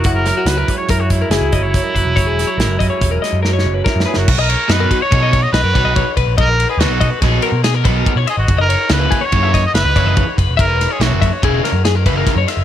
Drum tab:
CC |------------------------------|------------------------------|x-----------------------------|------------------------------|
RD |------------------------------|------------------------------|---x--x--x--x--x--x--x--x--x--|x--x--x--x--x--x--x--x--x--x--|
HH |x--x--x--x--x--x--x--x--x--x--|x--x--x--x--x--x--------------|------------------------------|------------------------------|
SD |---o--o-----o-----o-----o-----|---o--o--------o--o-o---o-o-o-|------o-----------o-----------|------o-----o-----o-----------|
BD |o--------o--o--o-----o--o--o--|o--------o--o-----------o-----|o--------o--o--o-----o--o--o--|o--------o--o--------o--o-----|

CC |------------------------------|------------------------------|
RD |x--x--x--x--x--x--x--x--x--x--|x--x--x--x--x--x--x--x--x--x--|
HH |------------------------------|------------------------------|
SD |------o--------o--o-----------|---o--o--------o--o-----o--o--|
BD |o--------o--o--o-----o--o--o--|o--------o--o--------o--o-----|